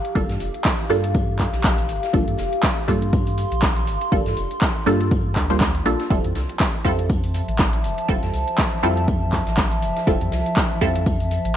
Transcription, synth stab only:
Already playing: G3 A#3 D4 F4 A4
0.15 G3 A#3 D4 F4 A4
0.90 G3 A#3 D4 F4 A4
2.13 G3 A#3 D4 F4 A4
2.88 G3 A#3 D4 F4 A4
4.12 G3 A#3 D4 F4 A4
4.86 G3 A#3 D4 F4 A4
5.50 G3 A#3 D4 F4 C5
5.85 G3 A#3 D4 F4 A4
6.10 G3 C4 E4 F4 A4
6.84 G3 C4 E4 F4 A4
8.08 G3 C4 E4 F4 A4
8.83 G3 C4 E4 F4 A4
10.07 G3 C4 E4 F4 A4
10.81 G3 C4 E4 F4 A4

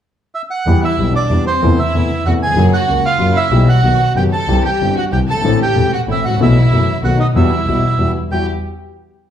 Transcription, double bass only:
0.66 E2
0.98 B1
1.29 E2
1.63 E2
1.94 E2
2.25 E2
2.57 F#1
2.88 C#2
3.19 F#1
3.50 B1
3.83 B1
4.15 F#1
4.48 C2
4.80 G1
5.12 C2
5.28 G1
5.45 A1
5.76 E1
6.07 A1
6.24 A1
6.39 B1
6.71 F#1
7.02 B1
7.34 E2
7.65 B1
7.98 E2
8.31 E2

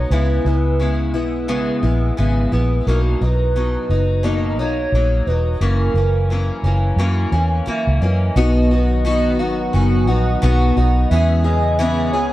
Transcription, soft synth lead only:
Already playing: C#5
0.10 B4
2.86 A#4
3.19 B4
4.23 D#5
4.59 C#5
5.26 B4
5.62 A#4
7.68 E5
8.00 D#5
8.71 D#5
9.39 F#5
9.74 G#5
10.07 F#5
11.10 E5
11.44 D#5
11.78 E5
12.12 C#5

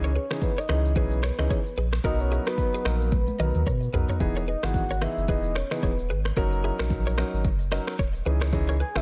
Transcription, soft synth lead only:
0.04 C#5
0.43 B4
0.58 D#5
0.97 B4
2.05 D#5
2.20 C#5
2.47 B4
2.86 A#4
3.13 B4
4.48 D#5
4.64 F#5
5.02 E5
5.29 D#5
5.56 C#5
5.72 B4
8.81 G#5
8.96 E5

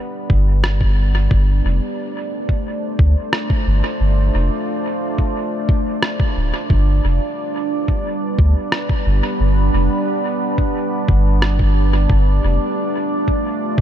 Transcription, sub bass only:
0.30 G1
1.31 G1
1.64 F1
2.99 D2
3.66 G1
4.00 G1
4.34 F1
6.36 D1
6.70 G1
7.04 F1
8.39 D2
9.06 G1
9.40 G1
9.73 F1
11.08 G1
12.10 G1
12.43 F1
13.78 D2

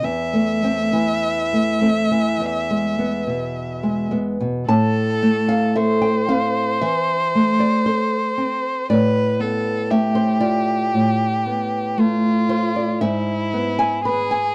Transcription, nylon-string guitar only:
0.03 E2
0.33 A3
0.63 A3 C4
0.93 E3
1.53 A3
1.81 A3 C4
2.11 E3
2.40 E2
2.71 G#3
2.98 G#3 B3
3.27 B2
3.83 G#3
4.11 G#3 B3
4.40 B2
4.68 A2 A5
5.23 A3
5.49 F5
5.76 A4 E5
6.02 G5
6.29 C4 F5
6.81 E3 E5
7.35 A3
7.60 D5
7.86 A4 C5
8.38 C4
8.90 A2 D5
9.40 B3
9.91 A3 E5
10.15 C5
10.40 F4 D5
10.94 A2
11.46 B3
11.98 A3
12.49 F4 C5
12.76 D5
13.01 G#2 E5
13.54 B3
13.79 G#5
14.05 B4 B5
14.31 G#5

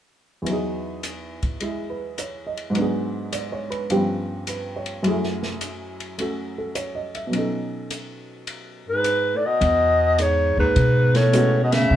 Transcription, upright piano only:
0.42 E2 E3
0.47 F#3 D#4
0.53 G#4
1.61 G#3 E4 G#4
1.90 B4
2.19 C#5
2.47 D#5
2.70 G#2 F#3
2.76 B3 D4
2.81 G#4
3.33 D5
3.52 C#5
3.70 B4
3.90 G2 F3 B3 C#4 G4
4.49 B4
4.76 C#5
5.03 F#2 F#3 A3
5.07 E4 G#4
6.18 A3 C#4 F#4 A4
6.58 A4
6.75 C#5
6.95 D#5
7.15 E5
7.27 B2 F#3
7.32 C#4 D#4
7.39 A4
11.33 G#3 B3 C#4 F#4

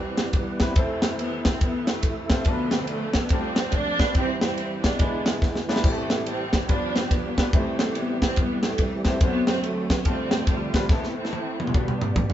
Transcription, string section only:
Already playing: E3 G3 C4
0.36 E3 G3 B3
0.77 C3 E3 A3
1.19 B3
1.47 C4
1.64 E3 B3
1.90 C3 E3 A3
2.48 D3 F3 B3
2.75 C4
2.89 A3
3.17 B3
3.32 F3 A3 C4
3.74 F3 A3 D4
4.15 E3 G3 C4
4.41 E3 G3 C4
4.84 G#3 B3 D4
5.85 C3 E3 A3
6.28 E3 G3 C4
6.70 F3 B3 D4
6.97 C4
7.12 D3 F3 B3
7.54 C3 E3 A3
7.96 B3
8.23 C4
8.38 E3 G3 B3
8.64 C3 E3 A3
9.22 F#3 B3
9.49 C4
9.64 A3
9.92 B3
10.06 F3 A3 C4
10.49 C3 D3 G3
10.90 E3 B3
11.17 E3 A3 C4
11.58 D3 G3 B3

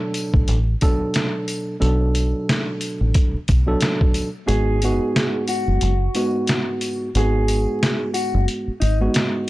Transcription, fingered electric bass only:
0.34 A1
0.49 A1
1.82 B1
3.01 A1
3.34 muted fingered electric bass stroke
3.49 B1
4.48 G#1
5.68 F#1
5.82 F#1
7.15 G#1
8.34 F#1
8.68 muted fingered electric bass stroke
8.82 G#1

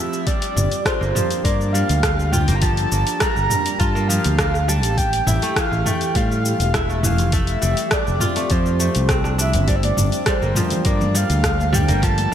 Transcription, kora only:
Already playing: F3 G3 A3 F4
0.27 G3
0.85 F4
1.01 A#3
1.15 F3
1.45 A#3
1.74 G3
2.33 F4
2.48 A#3
2.62 F3
2.92 A#3
3.21 G3
3.79 F4
3.95 A#3
4.09 F3
4.39 A#3
4.68 G3
5.27 E4
5.42 A3
5.57 E3
5.86 A3
6.15 G3
6.74 E4
6.90 A3
7.03 E3
7.33 A3
7.62 G3
8.21 F4
8.36 A3
8.51 F3
8.80 A3
9.09 C4
9.24 D4
9.38 D4
9.68 G3
10.26 G3
10.42 A#3
10.56 F3
10.85 A#3
11.14 G3
11.73 G3
11.88 A#3
12.02 F3

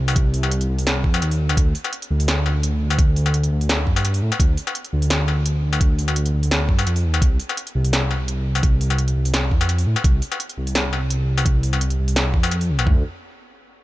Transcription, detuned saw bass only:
Already playing: C2
0.69 C2
1.04 F2
1.22 D#2
1.40 D2
1.57 D2
2.10 D2
3.52 D2
3.87 G2
4.22 A2
4.40 D2
4.93 D2
6.33 D2
6.69 G2
6.86 F2
7.04 D#2
7.22 C2
7.75 C2
9.16 C2
9.51 F2
9.87 A2
10.04 C2
10.57 C2
11.98 C2
12.34 F2
12.69 C2
12.79 A#1
12.87 D2

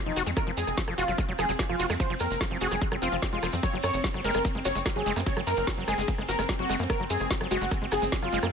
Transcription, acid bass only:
0.06 F3
0.16 F#4
0.27 G#3
0.37 F3
0.47 F3
0.78 F3
0.88 F3
0.98 F#4
1.08 F#3
1.18 G#3
1.28 F#3
1.39 F3
1.49 F#3
1.59 F3
1.69 F3
1.80 F#4
1.90 G#3
2.00 F3
2.10 F3
2.41 F3
2.51 F3
2.61 F#4
2.71 F#3
2.82 G#3
2.92 F#3
3.02 C4
3.12 F3
3.22 C4
3.33 G#3
3.43 F3
3.53 F3
3.63 F#3
3.73 F#3
4.04 F#3
4.14 F#3
4.24 G#3
4.35 G#3
4.45 A#3
4.55 G#3
4.65 F#4
4.75 G#3
4.86 F#3
4.96 F#3
5.06 G#3
5.16 A#3
5.26 F#3
5.37 F#3
5.67 F#3
5.77 F#3
5.88 G#3
5.98 G#3
6.08 A#3
6.18 G#3
6.29 F#4
6.39 G#3
6.49 F#3
6.59 F#3
6.69 G#3
6.80 A#3
6.90 F#3
7.00 F#3
7.31 F#3
7.41 F#3
7.51 G#3
7.61 G#3
7.71 A#3
7.82 G#3
7.92 F#4
8.02 G#3
8.12 F#3
8.22 F#3
8.33 G#3
8.43 A#3

